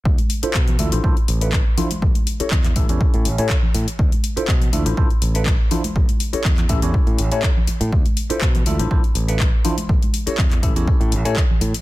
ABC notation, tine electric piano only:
X:1
M:4/4
L:1/16
Q:"Swing 16ths" 1/4=122
K:Ddor
V:1 name="Tine electric piano"
z3 [DEFAc] z2 [DEFAe] [DEFAc] [DEFAc] z2 [DEFAB] z2 [DEFAc] z | z3 [^CEGA^c] z2 [CEGAe] [CEGAc]4 [CEGAc] z4 | z3 [DEFAc] z2 [DEFAe] [DEFAc] [DEFAc] z2 [DEFAB] z2 [DEFAc] z | z3 [^CEGA^c] z2 [CEGAe] [CEGAc]4 [CEGAc] z4 |
z3 [DEFAc] z2 [DEFAe] [DEFAc] [DEFAc] z2 [DEFAB] z2 [DEFAc] z | z3 [^CEGA^c] z2 [CEGAe] [CEGAc]4 [CEGAc] z4 |]